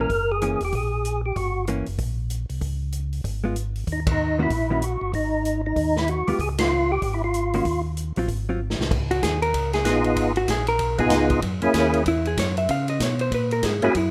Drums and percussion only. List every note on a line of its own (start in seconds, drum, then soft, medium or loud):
0.10 kick soft
0.10 open hi-hat soft
0.42 closed hi-hat soft
0.61 open hi-hat soft
0.72 kick soft
0.72 open hi-hat soft
1.05 closed hi-hat medium
1.36 kick soft
1.36 open hi-hat soft
1.67 closed hi-hat soft
1.86 open hi-hat soft
1.98 kick soft
1.98 open hi-hat soft
2.30 closed hi-hat soft
2.50 open hi-hat soft
2.61 kick soft
2.61 open hi-hat soft
2.92 closed hi-hat soft
3.13 open hi-hat soft
3.24 kick soft
3.24 open hi-hat soft
3.56 closed hi-hat medium
3.76 open hi-hat soft
3.87 kick soft
3.87 open hi-hat soft
4.07 kick medium
4.07 ride medium
4.50 kick soft
4.50 open hi-hat soft
4.82 closed hi-hat soft
5.13 kick soft
5.13 open hi-hat soft
5.45 closed hi-hat medium
5.76 kick soft
5.76 open hi-hat soft
5.96 snare medium
6.08 closed hi-hat medium
6.28 open hi-hat soft
6.39 kick soft
6.39 open hi-hat soft
6.58 snare medium
6.58 ride medium
7.02 kick soft
7.02 open hi-hat soft
7.34 closed hi-hat soft
7.53 open hi-hat soft
7.65 kick soft
7.65 open hi-hat soft
7.97 closed hi-hat soft
8.16 open hi-hat soft
8.28 kick soft
8.28 open hi-hat soft
8.70 snare medium
8.81 snare medium
8.91 kick medium
8.91 crash medium
9.11 ride soft
9.22 kick soft
9.22 snare medium
9.22 hi-hat pedal medium
9.22 ride medium
9.42 ride soft
9.54 kick soft
9.54 ride medium
9.73 snare soft
9.73 ride soft
9.85 kick soft
9.85 snare medium
9.85 hi-hat pedal soft
9.85 ride medium
10.04 ride soft
10.16 kick soft
10.16 ride medium
10.36 ride soft
10.48 kick soft
10.48 snare medium
10.48 hi-hat pedal soft
10.48 ride medium
10.67 ride soft
10.79 kick soft
10.79 ride medium
10.98 kick soft
10.98 ride soft
11.10 kick soft
11.10 snare medium
11.10 hi-hat pedal medium
11.10 ride medium
11.30 kick soft
11.30 ride soft
11.42 kick soft
11.42 ride medium
11.62 ride soft
11.74 kick soft
11.74 snare medium
11.74 hi-hat pedal medium
11.74 ride medium
11.94 ride soft
12.06 kick soft
12.06 ride medium
12.25 ride soft
12.37 kick soft
12.37 snare medium
12.37 hi-hat pedal medium
12.37 ride medium
12.57 ride soft
12.69 kick soft
12.69 ride medium
12.88 ride soft
13.00 kick soft
13.00 snare medium
13.00 hi-hat pedal medium
13.00 ride medium
13.19 ride soft
13.32 kick soft
13.32 ride medium
13.51 ride soft
13.63 kick soft
13.63 snare medium
13.63 hi-hat pedal medium
13.63 ride medium
13.82 ride soft
13.95 kick soft
13.95 ride medium